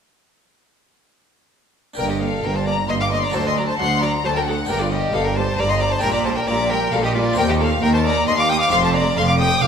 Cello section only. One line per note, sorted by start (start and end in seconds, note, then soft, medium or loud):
1.98 2.38 G2 medium
2.44 2.84 G2 medium
2.89 3.29 G2 medium
3.34 3.74 D2 medium
3.80 4.19 D2 medium
4.24 4.64 D2 medium
4.69 5.08 G2 medium
5.14 5.53 G2 medium
5.58 5.98 G2 medium
6.03 6.43 A#2 medium
6.48 6.88 A#2 medium
6.93 7.32 A#2 medium
7.38 7.77 D#2 loud
7.83 8.22 D#2 medium
8.27 8.67 D#2 medium
8.72 9.12 F2 loud
9.17 9.57 F2 medium
9.62 9.67 F2 medium